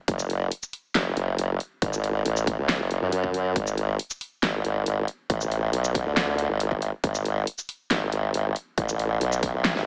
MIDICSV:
0, 0, Header, 1, 3, 480
1, 0, Start_track
1, 0, Tempo, 434783
1, 89, Time_signature, 4, 2, 24, 8
1, 10888, End_track
2, 0, Start_track
2, 0, Title_t, "Wobble bass"
2, 0, Program_c, 0, 39
2, 89, Note_on_c, 0, 30, 93
2, 550, Note_off_c, 0, 30, 0
2, 1049, Note_on_c, 0, 30, 94
2, 1270, Note_off_c, 0, 30, 0
2, 1289, Note_on_c, 0, 30, 100
2, 1510, Note_off_c, 0, 30, 0
2, 1529, Note_on_c, 0, 30, 93
2, 1750, Note_off_c, 0, 30, 0
2, 2009, Note_on_c, 0, 32, 96
2, 2470, Note_off_c, 0, 32, 0
2, 2489, Note_on_c, 0, 33, 94
2, 2833, Note_off_c, 0, 33, 0
2, 2853, Note_on_c, 0, 37, 101
2, 3073, Note_off_c, 0, 37, 0
2, 3093, Note_on_c, 0, 30, 101
2, 3313, Note_off_c, 0, 30, 0
2, 3332, Note_on_c, 0, 42, 98
2, 3430, Note_off_c, 0, 42, 0
2, 3449, Note_on_c, 0, 42, 93
2, 3910, Note_off_c, 0, 42, 0
2, 3929, Note_on_c, 0, 32, 91
2, 4390, Note_off_c, 0, 32, 0
2, 4889, Note_on_c, 0, 32, 99
2, 5110, Note_off_c, 0, 32, 0
2, 5129, Note_on_c, 0, 32, 100
2, 5350, Note_off_c, 0, 32, 0
2, 5369, Note_on_c, 0, 32, 95
2, 5591, Note_off_c, 0, 32, 0
2, 5849, Note_on_c, 0, 33, 96
2, 6310, Note_off_c, 0, 33, 0
2, 6329, Note_on_c, 0, 35, 95
2, 6672, Note_off_c, 0, 35, 0
2, 6692, Note_on_c, 0, 38, 98
2, 7153, Note_off_c, 0, 38, 0
2, 7172, Note_on_c, 0, 32, 99
2, 7633, Note_off_c, 0, 32, 0
2, 7769, Note_on_c, 0, 32, 92
2, 8230, Note_off_c, 0, 32, 0
2, 8729, Note_on_c, 0, 32, 96
2, 8951, Note_off_c, 0, 32, 0
2, 8969, Note_on_c, 0, 32, 95
2, 9190, Note_off_c, 0, 32, 0
2, 9209, Note_on_c, 0, 32, 93
2, 9430, Note_off_c, 0, 32, 0
2, 9689, Note_on_c, 0, 33, 94
2, 10150, Note_off_c, 0, 33, 0
2, 10169, Note_on_c, 0, 35, 99
2, 10512, Note_off_c, 0, 35, 0
2, 10532, Note_on_c, 0, 35, 100
2, 10753, Note_off_c, 0, 35, 0
2, 10772, Note_on_c, 0, 32, 102
2, 10888, Note_off_c, 0, 32, 0
2, 10888, End_track
3, 0, Start_track
3, 0, Title_t, "Drums"
3, 88, Note_on_c, 9, 42, 79
3, 89, Note_on_c, 9, 36, 127
3, 199, Note_off_c, 9, 36, 0
3, 199, Note_off_c, 9, 42, 0
3, 212, Note_on_c, 9, 82, 78
3, 322, Note_off_c, 9, 82, 0
3, 329, Note_on_c, 9, 42, 53
3, 439, Note_off_c, 9, 42, 0
3, 569, Note_on_c, 9, 42, 81
3, 679, Note_off_c, 9, 42, 0
3, 692, Note_on_c, 9, 82, 77
3, 802, Note_off_c, 9, 82, 0
3, 809, Note_on_c, 9, 46, 88
3, 919, Note_off_c, 9, 46, 0
3, 1048, Note_on_c, 9, 38, 121
3, 1048, Note_on_c, 9, 39, 94
3, 1048, Note_on_c, 9, 42, 77
3, 1159, Note_off_c, 9, 38, 0
3, 1159, Note_off_c, 9, 39, 0
3, 1159, Note_off_c, 9, 42, 0
3, 1289, Note_on_c, 9, 42, 53
3, 1399, Note_off_c, 9, 42, 0
3, 1529, Note_on_c, 9, 42, 76
3, 1639, Note_off_c, 9, 42, 0
3, 1769, Note_on_c, 9, 42, 52
3, 1880, Note_off_c, 9, 42, 0
3, 2009, Note_on_c, 9, 36, 125
3, 2009, Note_on_c, 9, 42, 77
3, 2119, Note_off_c, 9, 42, 0
3, 2120, Note_off_c, 9, 36, 0
3, 2132, Note_on_c, 9, 82, 81
3, 2243, Note_off_c, 9, 82, 0
3, 2249, Note_on_c, 9, 42, 52
3, 2359, Note_off_c, 9, 42, 0
3, 2489, Note_on_c, 9, 42, 75
3, 2600, Note_off_c, 9, 42, 0
3, 2612, Note_on_c, 9, 82, 84
3, 2723, Note_off_c, 9, 82, 0
3, 2729, Note_on_c, 9, 36, 115
3, 2729, Note_on_c, 9, 46, 91
3, 2839, Note_off_c, 9, 46, 0
3, 2840, Note_off_c, 9, 36, 0
3, 2969, Note_on_c, 9, 38, 124
3, 2969, Note_on_c, 9, 39, 89
3, 2969, Note_on_c, 9, 42, 75
3, 3079, Note_off_c, 9, 38, 0
3, 3079, Note_off_c, 9, 39, 0
3, 3079, Note_off_c, 9, 42, 0
3, 3209, Note_on_c, 9, 42, 50
3, 3319, Note_off_c, 9, 42, 0
3, 3449, Note_on_c, 9, 42, 75
3, 3559, Note_off_c, 9, 42, 0
3, 3572, Note_on_c, 9, 36, 68
3, 3683, Note_off_c, 9, 36, 0
3, 3689, Note_on_c, 9, 42, 52
3, 3799, Note_off_c, 9, 42, 0
3, 3928, Note_on_c, 9, 42, 78
3, 3929, Note_on_c, 9, 36, 121
3, 4039, Note_off_c, 9, 42, 0
3, 4040, Note_off_c, 9, 36, 0
3, 4052, Note_on_c, 9, 82, 80
3, 4162, Note_off_c, 9, 82, 0
3, 4169, Note_on_c, 9, 42, 51
3, 4279, Note_off_c, 9, 42, 0
3, 4409, Note_on_c, 9, 42, 79
3, 4519, Note_off_c, 9, 42, 0
3, 4532, Note_on_c, 9, 82, 85
3, 4642, Note_off_c, 9, 82, 0
3, 4648, Note_on_c, 9, 46, 92
3, 4759, Note_off_c, 9, 46, 0
3, 4889, Note_on_c, 9, 38, 122
3, 4889, Note_on_c, 9, 39, 84
3, 4889, Note_on_c, 9, 42, 79
3, 4999, Note_off_c, 9, 38, 0
3, 4999, Note_off_c, 9, 39, 0
3, 4999, Note_off_c, 9, 42, 0
3, 5129, Note_on_c, 9, 42, 51
3, 5239, Note_off_c, 9, 42, 0
3, 5369, Note_on_c, 9, 42, 77
3, 5479, Note_off_c, 9, 42, 0
3, 5608, Note_on_c, 9, 42, 53
3, 5719, Note_off_c, 9, 42, 0
3, 5849, Note_on_c, 9, 36, 115
3, 5849, Note_on_c, 9, 42, 81
3, 5959, Note_off_c, 9, 36, 0
3, 5959, Note_off_c, 9, 42, 0
3, 5972, Note_on_c, 9, 82, 84
3, 6082, Note_off_c, 9, 82, 0
3, 6089, Note_on_c, 9, 42, 52
3, 6199, Note_off_c, 9, 42, 0
3, 6329, Note_on_c, 9, 42, 80
3, 6439, Note_off_c, 9, 42, 0
3, 6452, Note_on_c, 9, 82, 84
3, 6562, Note_off_c, 9, 82, 0
3, 6569, Note_on_c, 9, 36, 103
3, 6569, Note_on_c, 9, 46, 98
3, 6679, Note_off_c, 9, 36, 0
3, 6679, Note_off_c, 9, 46, 0
3, 6809, Note_on_c, 9, 38, 115
3, 6809, Note_on_c, 9, 39, 82
3, 6809, Note_on_c, 9, 42, 78
3, 6919, Note_off_c, 9, 38, 0
3, 6919, Note_off_c, 9, 39, 0
3, 6919, Note_off_c, 9, 42, 0
3, 7048, Note_on_c, 9, 42, 55
3, 7159, Note_off_c, 9, 42, 0
3, 7288, Note_on_c, 9, 42, 80
3, 7399, Note_off_c, 9, 42, 0
3, 7412, Note_on_c, 9, 36, 60
3, 7522, Note_off_c, 9, 36, 0
3, 7529, Note_on_c, 9, 42, 54
3, 7639, Note_off_c, 9, 42, 0
3, 7769, Note_on_c, 9, 36, 120
3, 7769, Note_on_c, 9, 42, 83
3, 7879, Note_off_c, 9, 36, 0
3, 7879, Note_off_c, 9, 42, 0
3, 7891, Note_on_c, 9, 82, 82
3, 8002, Note_off_c, 9, 82, 0
3, 8009, Note_on_c, 9, 42, 55
3, 8119, Note_off_c, 9, 42, 0
3, 8249, Note_on_c, 9, 42, 81
3, 8359, Note_off_c, 9, 42, 0
3, 8372, Note_on_c, 9, 82, 82
3, 8482, Note_off_c, 9, 82, 0
3, 8488, Note_on_c, 9, 46, 99
3, 8599, Note_off_c, 9, 46, 0
3, 8728, Note_on_c, 9, 38, 118
3, 8728, Note_on_c, 9, 39, 89
3, 8728, Note_on_c, 9, 42, 82
3, 8839, Note_off_c, 9, 38, 0
3, 8839, Note_off_c, 9, 39, 0
3, 8839, Note_off_c, 9, 42, 0
3, 8968, Note_on_c, 9, 42, 57
3, 9079, Note_off_c, 9, 42, 0
3, 9209, Note_on_c, 9, 42, 80
3, 9319, Note_off_c, 9, 42, 0
3, 9449, Note_on_c, 9, 42, 56
3, 9559, Note_off_c, 9, 42, 0
3, 9689, Note_on_c, 9, 36, 122
3, 9689, Note_on_c, 9, 42, 88
3, 9799, Note_off_c, 9, 42, 0
3, 9800, Note_off_c, 9, 36, 0
3, 9812, Note_on_c, 9, 82, 78
3, 9923, Note_off_c, 9, 82, 0
3, 9929, Note_on_c, 9, 42, 55
3, 10039, Note_off_c, 9, 42, 0
3, 10169, Note_on_c, 9, 42, 85
3, 10279, Note_off_c, 9, 42, 0
3, 10292, Note_on_c, 9, 82, 79
3, 10402, Note_off_c, 9, 82, 0
3, 10408, Note_on_c, 9, 46, 100
3, 10409, Note_on_c, 9, 36, 103
3, 10519, Note_off_c, 9, 36, 0
3, 10519, Note_off_c, 9, 46, 0
3, 10649, Note_on_c, 9, 38, 116
3, 10649, Note_on_c, 9, 39, 91
3, 10649, Note_on_c, 9, 42, 81
3, 10649, Note_on_c, 9, 48, 61
3, 10759, Note_off_c, 9, 38, 0
3, 10759, Note_off_c, 9, 39, 0
3, 10759, Note_off_c, 9, 42, 0
3, 10759, Note_off_c, 9, 48, 0
3, 10772, Note_on_c, 9, 38, 60
3, 10882, Note_off_c, 9, 38, 0
3, 10888, End_track
0, 0, End_of_file